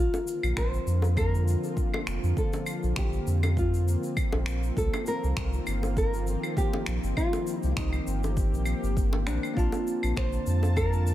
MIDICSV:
0, 0, Header, 1, 6, 480
1, 0, Start_track
1, 0, Key_signature, -2, "major"
1, 0, Tempo, 600000
1, 1894, Time_signature, 4, 2, 24, 8
1, 8914, End_track
2, 0, Start_track
2, 0, Title_t, "Nylon-string guitar"
2, 0, Program_c, 0, 24
2, 0, Note_on_c, 0, 65, 86
2, 462, Note_on_c, 0, 72, 92
2, 472, Note_off_c, 0, 65, 0
2, 939, Note_off_c, 0, 72, 0
2, 942, Note_on_c, 0, 70, 92
2, 1902, Note_off_c, 0, 70, 0
2, 1905, Note_on_c, 0, 69, 86
2, 2384, Note_off_c, 0, 69, 0
2, 2387, Note_on_c, 0, 67, 82
2, 2829, Note_off_c, 0, 67, 0
2, 2870, Note_on_c, 0, 65, 70
2, 3310, Note_off_c, 0, 65, 0
2, 3822, Note_on_c, 0, 69, 84
2, 4042, Note_off_c, 0, 69, 0
2, 4062, Note_on_c, 0, 70, 94
2, 4773, Note_off_c, 0, 70, 0
2, 4783, Note_on_c, 0, 70, 89
2, 5258, Note_off_c, 0, 70, 0
2, 5262, Note_on_c, 0, 67, 90
2, 5733, Note_off_c, 0, 67, 0
2, 5736, Note_on_c, 0, 65, 90
2, 6080, Note_off_c, 0, 65, 0
2, 6080, Note_on_c, 0, 63, 90
2, 6160, Note_off_c, 0, 63, 0
2, 6170, Note_on_c, 0, 65, 60
2, 6217, Note_off_c, 0, 65, 0
2, 6221, Note_on_c, 0, 63, 85
2, 7411, Note_off_c, 0, 63, 0
2, 7414, Note_on_c, 0, 62, 82
2, 7637, Note_off_c, 0, 62, 0
2, 7655, Note_on_c, 0, 65, 88
2, 8132, Note_off_c, 0, 65, 0
2, 8135, Note_on_c, 0, 72, 96
2, 8612, Note_off_c, 0, 72, 0
2, 8615, Note_on_c, 0, 70, 95
2, 8914, Note_off_c, 0, 70, 0
2, 8914, End_track
3, 0, Start_track
3, 0, Title_t, "Tine electric piano"
3, 0, Program_c, 1, 4
3, 7630, Note_on_c, 1, 58, 79
3, 7642, Note_on_c, 1, 60, 71
3, 7652, Note_on_c, 1, 62, 76
3, 7660, Note_on_c, 1, 65, 75
3, 7672, Note_on_c, 1, 81, 87
3, 7823, Control_c, 1, 64, 127
3, 8914, Note_off_c, 1, 58, 0
3, 8914, Note_off_c, 1, 60, 0
3, 8914, Note_off_c, 1, 62, 0
3, 8914, Note_off_c, 1, 65, 0
3, 8914, Note_off_c, 1, 81, 0
3, 8914, End_track
4, 0, Start_track
4, 0, Title_t, "Analog synth pad"
4, 0, Program_c, 2, 89
4, 0, Note_on_c, 2, 50, 80
4, 0, Note_on_c, 2, 53, 77
4, 0, Note_on_c, 2, 58, 73
4, 0, Note_on_c, 2, 60, 73
4, 0, Note_on_c, 2, 65, 86
4, 3780, Note_off_c, 2, 53, 0
4, 3781, Note_off_c, 2, 50, 0
4, 3781, Note_off_c, 2, 65, 0
4, 3812, Note_on_c, 2, 53, 76
4, 3813, Note_on_c, 2, 51, 76
4, 3815, Note_on_c, 2, 65, 91
4, 5715, Note_off_c, 2, 65, 0
4, 5730, Note_on_c, 2, 67, 88
4, 7621, Note_off_c, 2, 53, 0
4, 7622, Note_off_c, 2, 51, 0
4, 7633, Note_off_c, 2, 67, 0
4, 7649, Note_on_c, 2, 65, 91
4, 7649, Note_on_c, 2, 81, 72
4, 7650, Note_on_c, 2, 50, 80
4, 8914, Note_off_c, 2, 50, 0
4, 8914, Note_off_c, 2, 58, 0
4, 8914, Note_off_c, 2, 60, 0
4, 8914, Note_off_c, 2, 65, 0
4, 8914, Note_off_c, 2, 81, 0
4, 8914, End_track
5, 0, Start_track
5, 0, Title_t, "Sub bass"
5, 0, Program_c, 3, 38
5, 345, Note_on_c, 3, 34, 75
5, 423, Note_off_c, 3, 34, 0
5, 454, Note_on_c, 3, 34, 82
5, 633, Note_off_c, 3, 34, 0
5, 692, Note_on_c, 3, 41, 81
5, 1245, Note_off_c, 3, 41, 0
5, 1654, Note_on_c, 3, 29, 72
5, 1748, Note_off_c, 3, 29, 0
5, 1785, Note_on_c, 3, 41, 100
5, 1863, Note_off_c, 3, 41, 0
5, 2266, Note_on_c, 3, 34, 80
5, 2343, Note_off_c, 3, 34, 0
5, 2376, Note_on_c, 3, 34, 76
5, 2554, Note_off_c, 3, 34, 0
5, 2614, Note_on_c, 3, 41, 85
5, 3166, Note_off_c, 3, 41, 0
5, 3468, Note_on_c, 3, 34, 84
5, 3766, Note_off_c, 3, 34, 0
5, 3814, Note_on_c, 3, 36, 89
5, 3908, Note_off_c, 3, 36, 0
5, 4188, Note_on_c, 3, 36, 79
5, 4264, Note_off_c, 3, 36, 0
5, 4295, Note_on_c, 3, 36, 82
5, 4473, Note_off_c, 3, 36, 0
5, 4536, Note_on_c, 3, 31, 77
5, 5087, Note_off_c, 3, 31, 0
5, 5498, Note_on_c, 3, 34, 82
5, 5590, Note_off_c, 3, 34, 0
5, 5626, Note_on_c, 3, 31, 99
5, 5703, Note_off_c, 3, 31, 0
5, 6106, Note_on_c, 3, 36, 77
5, 6183, Note_off_c, 3, 36, 0
5, 6215, Note_on_c, 3, 36, 77
5, 6393, Note_off_c, 3, 36, 0
5, 6454, Note_on_c, 3, 31, 82
5, 6820, Note_off_c, 3, 31, 0
5, 6825, Note_on_c, 3, 34, 86
5, 6990, Note_off_c, 3, 34, 0
5, 7063, Note_on_c, 3, 31, 86
5, 7414, Note_on_c, 3, 34, 93
5, 7426, Note_off_c, 3, 31, 0
5, 7508, Note_off_c, 3, 34, 0
5, 7654, Note_on_c, 3, 34, 99
5, 7748, Note_off_c, 3, 34, 0
5, 8026, Note_on_c, 3, 34, 81
5, 8103, Note_off_c, 3, 34, 0
5, 8133, Note_on_c, 3, 34, 79
5, 8312, Note_off_c, 3, 34, 0
5, 8372, Note_on_c, 3, 41, 83
5, 8914, Note_off_c, 3, 41, 0
5, 8914, End_track
6, 0, Start_track
6, 0, Title_t, "Drums"
6, 109, Note_on_c, 9, 60, 80
6, 112, Note_on_c, 9, 82, 49
6, 189, Note_off_c, 9, 60, 0
6, 192, Note_off_c, 9, 82, 0
6, 219, Note_on_c, 9, 82, 84
6, 299, Note_off_c, 9, 82, 0
6, 347, Note_on_c, 9, 75, 74
6, 351, Note_on_c, 9, 82, 42
6, 427, Note_off_c, 9, 75, 0
6, 431, Note_off_c, 9, 82, 0
6, 453, Note_on_c, 9, 36, 89
6, 455, Note_on_c, 9, 26, 85
6, 457, Note_on_c, 9, 82, 58
6, 533, Note_off_c, 9, 36, 0
6, 535, Note_off_c, 9, 26, 0
6, 537, Note_off_c, 9, 82, 0
6, 588, Note_on_c, 9, 82, 42
6, 668, Note_off_c, 9, 82, 0
6, 698, Note_on_c, 9, 82, 74
6, 778, Note_off_c, 9, 82, 0
6, 818, Note_on_c, 9, 60, 78
6, 831, Note_on_c, 9, 82, 47
6, 898, Note_off_c, 9, 60, 0
6, 911, Note_off_c, 9, 82, 0
6, 934, Note_on_c, 9, 36, 95
6, 938, Note_on_c, 9, 75, 68
6, 939, Note_on_c, 9, 82, 51
6, 1014, Note_off_c, 9, 36, 0
6, 1018, Note_off_c, 9, 75, 0
6, 1019, Note_off_c, 9, 82, 0
6, 1076, Note_on_c, 9, 82, 49
6, 1156, Note_off_c, 9, 82, 0
6, 1182, Note_on_c, 9, 82, 72
6, 1262, Note_off_c, 9, 82, 0
6, 1309, Note_on_c, 9, 82, 45
6, 1389, Note_off_c, 9, 82, 0
6, 1414, Note_on_c, 9, 36, 85
6, 1417, Note_on_c, 9, 82, 54
6, 1494, Note_off_c, 9, 36, 0
6, 1497, Note_off_c, 9, 82, 0
6, 1548, Note_on_c, 9, 75, 68
6, 1552, Note_on_c, 9, 60, 82
6, 1628, Note_off_c, 9, 75, 0
6, 1632, Note_off_c, 9, 60, 0
6, 1656, Note_on_c, 9, 26, 73
6, 1658, Note_on_c, 9, 82, 74
6, 1736, Note_off_c, 9, 26, 0
6, 1738, Note_off_c, 9, 82, 0
6, 1791, Note_on_c, 9, 82, 55
6, 1871, Note_off_c, 9, 82, 0
6, 1894, Note_on_c, 9, 36, 101
6, 1898, Note_on_c, 9, 82, 61
6, 1974, Note_off_c, 9, 36, 0
6, 1978, Note_off_c, 9, 82, 0
6, 2023, Note_on_c, 9, 82, 42
6, 2028, Note_on_c, 9, 60, 84
6, 2103, Note_off_c, 9, 82, 0
6, 2108, Note_off_c, 9, 60, 0
6, 2131, Note_on_c, 9, 75, 68
6, 2133, Note_on_c, 9, 82, 87
6, 2211, Note_off_c, 9, 75, 0
6, 2213, Note_off_c, 9, 82, 0
6, 2265, Note_on_c, 9, 82, 46
6, 2345, Note_off_c, 9, 82, 0
6, 2370, Note_on_c, 9, 26, 76
6, 2375, Note_on_c, 9, 36, 101
6, 2375, Note_on_c, 9, 82, 61
6, 2450, Note_off_c, 9, 26, 0
6, 2455, Note_off_c, 9, 36, 0
6, 2455, Note_off_c, 9, 82, 0
6, 2503, Note_on_c, 9, 82, 42
6, 2583, Note_off_c, 9, 82, 0
6, 2617, Note_on_c, 9, 82, 81
6, 2697, Note_off_c, 9, 82, 0
6, 2745, Note_on_c, 9, 75, 81
6, 2746, Note_on_c, 9, 82, 44
6, 2747, Note_on_c, 9, 60, 72
6, 2825, Note_off_c, 9, 75, 0
6, 2826, Note_off_c, 9, 82, 0
6, 2827, Note_off_c, 9, 60, 0
6, 2855, Note_on_c, 9, 36, 97
6, 2860, Note_on_c, 9, 82, 53
6, 2935, Note_off_c, 9, 36, 0
6, 2940, Note_off_c, 9, 82, 0
6, 2992, Note_on_c, 9, 82, 50
6, 3072, Note_off_c, 9, 82, 0
6, 3105, Note_on_c, 9, 82, 88
6, 3185, Note_off_c, 9, 82, 0
6, 3226, Note_on_c, 9, 82, 50
6, 3306, Note_off_c, 9, 82, 0
6, 3334, Note_on_c, 9, 36, 100
6, 3334, Note_on_c, 9, 75, 78
6, 3337, Note_on_c, 9, 82, 63
6, 3414, Note_off_c, 9, 36, 0
6, 3414, Note_off_c, 9, 75, 0
6, 3417, Note_off_c, 9, 82, 0
6, 3460, Note_on_c, 9, 60, 92
6, 3540, Note_off_c, 9, 60, 0
6, 3568, Note_on_c, 9, 26, 67
6, 3579, Note_on_c, 9, 82, 86
6, 3648, Note_off_c, 9, 26, 0
6, 3659, Note_off_c, 9, 82, 0
6, 3705, Note_on_c, 9, 82, 47
6, 3785, Note_off_c, 9, 82, 0
6, 3814, Note_on_c, 9, 36, 104
6, 3820, Note_on_c, 9, 82, 65
6, 3894, Note_off_c, 9, 36, 0
6, 3900, Note_off_c, 9, 82, 0
6, 3948, Note_on_c, 9, 75, 68
6, 3949, Note_on_c, 9, 60, 87
6, 3951, Note_on_c, 9, 82, 43
6, 4028, Note_off_c, 9, 75, 0
6, 4029, Note_off_c, 9, 60, 0
6, 4031, Note_off_c, 9, 82, 0
6, 4051, Note_on_c, 9, 82, 83
6, 4131, Note_off_c, 9, 82, 0
6, 4190, Note_on_c, 9, 82, 50
6, 4270, Note_off_c, 9, 82, 0
6, 4294, Note_on_c, 9, 26, 76
6, 4294, Note_on_c, 9, 36, 100
6, 4298, Note_on_c, 9, 82, 55
6, 4374, Note_off_c, 9, 26, 0
6, 4374, Note_off_c, 9, 36, 0
6, 4378, Note_off_c, 9, 82, 0
6, 4425, Note_on_c, 9, 82, 45
6, 4505, Note_off_c, 9, 82, 0
6, 4534, Note_on_c, 9, 75, 73
6, 4534, Note_on_c, 9, 82, 85
6, 4614, Note_off_c, 9, 75, 0
6, 4614, Note_off_c, 9, 82, 0
6, 4664, Note_on_c, 9, 60, 74
6, 4670, Note_on_c, 9, 82, 54
6, 4744, Note_off_c, 9, 60, 0
6, 4750, Note_off_c, 9, 82, 0
6, 4773, Note_on_c, 9, 36, 104
6, 4776, Note_on_c, 9, 82, 56
6, 4853, Note_off_c, 9, 36, 0
6, 4856, Note_off_c, 9, 82, 0
6, 4909, Note_on_c, 9, 82, 46
6, 4989, Note_off_c, 9, 82, 0
6, 5016, Note_on_c, 9, 82, 79
6, 5096, Note_off_c, 9, 82, 0
6, 5148, Note_on_c, 9, 75, 65
6, 5151, Note_on_c, 9, 82, 49
6, 5228, Note_off_c, 9, 75, 0
6, 5231, Note_off_c, 9, 82, 0
6, 5254, Note_on_c, 9, 36, 104
6, 5260, Note_on_c, 9, 82, 63
6, 5334, Note_off_c, 9, 36, 0
6, 5340, Note_off_c, 9, 82, 0
6, 5388, Note_on_c, 9, 60, 90
6, 5468, Note_off_c, 9, 60, 0
6, 5491, Note_on_c, 9, 26, 78
6, 5494, Note_on_c, 9, 82, 85
6, 5571, Note_off_c, 9, 26, 0
6, 5574, Note_off_c, 9, 82, 0
6, 5629, Note_on_c, 9, 82, 60
6, 5709, Note_off_c, 9, 82, 0
6, 5734, Note_on_c, 9, 36, 97
6, 5734, Note_on_c, 9, 75, 77
6, 5742, Note_on_c, 9, 82, 59
6, 5814, Note_off_c, 9, 36, 0
6, 5814, Note_off_c, 9, 75, 0
6, 5822, Note_off_c, 9, 82, 0
6, 5865, Note_on_c, 9, 60, 88
6, 5867, Note_on_c, 9, 82, 42
6, 5945, Note_off_c, 9, 60, 0
6, 5947, Note_off_c, 9, 82, 0
6, 5975, Note_on_c, 9, 82, 76
6, 6055, Note_off_c, 9, 82, 0
6, 6104, Note_on_c, 9, 82, 50
6, 6184, Note_off_c, 9, 82, 0
6, 6214, Note_on_c, 9, 26, 72
6, 6214, Note_on_c, 9, 36, 100
6, 6218, Note_on_c, 9, 82, 56
6, 6294, Note_off_c, 9, 26, 0
6, 6294, Note_off_c, 9, 36, 0
6, 6298, Note_off_c, 9, 82, 0
6, 6341, Note_on_c, 9, 75, 67
6, 6344, Note_on_c, 9, 82, 42
6, 6421, Note_off_c, 9, 75, 0
6, 6424, Note_off_c, 9, 82, 0
6, 6458, Note_on_c, 9, 82, 87
6, 6538, Note_off_c, 9, 82, 0
6, 6586, Note_on_c, 9, 82, 53
6, 6593, Note_on_c, 9, 60, 78
6, 6666, Note_off_c, 9, 82, 0
6, 6673, Note_off_c, 9, 60, 0
6, 6694, Note_on_c, 9, 36, 101
6, 6695, Note_on_c, 9, 82, 59
6, 6774, Note_off_c, 9, 36, 0
6, 6775, Note_off_c, 9, 82, 0
6, 6832, Note_on_c, 9, 82, 45
6, 6912, Note_off_c, 9, 82, 0
6, 6924, Note_on_c, 9, 75, 64
6, 6926, Note_on_c, 9, 82, 73
6, 7004, Note_off_c, 9, 75, 0
6, 7006, Note_off_c, 9, 82, 0
6, 7069, Note_on_c, 9, 82, 54
6, 7149, Note_off_c, 9, 82, 0
6, 7173, Note_on_c, 9, 36, 102
6, 7178, Note_on_c, 9, 82, 60
6, 7253, Note_off_c, 9, 36, 0
6, 7258, Note_off_c, 9, 82, 0
6, 7302, Note_on_c, 9, 60, 88
6, 7382, Note_off_c, 9, 60, 0
6, 7414, Note_on_c, 9, 26, 67
6, 7418, Note_on_c, 9, 82, 78
6, 7494, Note_off_c, 9, 26, 0
6, 7498, Note_off_c, 9, 82, 0
6, 7546, Note_on_c, 9, 75, 75
6, 7554, Note_on_c, 9, 82, 51
6, 7626, Note_off_c, 9, 75, 0
6, 7634, Note_off_c, 9, 82, 0
6, 7653, Note_on_c, 9, 36, 95
6, 7664, Note_on_c, 9, 82, 59
6, 7733, Note_off_c, 9, 36, 0
6, 7744, Note_off_c, 9, 82, 0
6, 7779, Note_on_c, 9, 60, 86
6, 7784, Note_on_c, 9, 82, 45
6, 7859, Note_off_c, 9, 60, 0
6, 7864, Note_off_c, 9, 82, 0
6, 7897, Note_on_c, 9, 82, 75
6, 7977, Note_off_c, 9, 82, 0
6, 8024, Note_on_c, 9, 75, 68
6, 8028, Note_on_c, 9, 82, 46
6, 8104, Note_off_c, 9, 75, 0
6, 8108, Note_off_c, 9, 82, 0
6, 8133, Note_on_c, 9, 36, 93
6, 8134, Note_on_c, 9, 82, 61
6, 8139, Note_on_c, 9, 26, 70
6, 8213, Note_off_c, 9, 36, 0
6, 8214, Note_off_c, 9, 82, 0
6, 8219, Note_off_c, 9, 26, 0
6, 8261, Note_on_c, 9, 82, 45
6, 8341, Note_off_c, 9, 82, 0
6, 8371, Note_on_c, 9, 82, 81
6, 8451, Note_off_c, 9, 82, 0
6, 8502, Note_on_c, 9, 60, 80
6, 8511, Note_on_c, 9, 82, 46
6, 8582, Note_off_c, 9, 60, 0
6, 8591, Note_off_c, 9, 82, 0
6, 8612, Note_on_c, 9, 36, 92
6, 8614, Note_on_c, 9, 75, 65
6, 8615, Note_on_c, 9, 82, 53
6, 8692, Note_off_c, 9, 36, 0
6, 8694, Note_off_c, 9, 75, 0
6, 8695, Note_off_c, 9, 82, 0
6, 8744, Note_on_c, 9, 82, 50
6, 8824, Note_off_c, 9, 82, 0
6, 8854, Note_on_c, 9, 82, 79
6, 8914, Note_off_c, 9, 82, 0
6, 8914, End_track
0, 0, End_of_file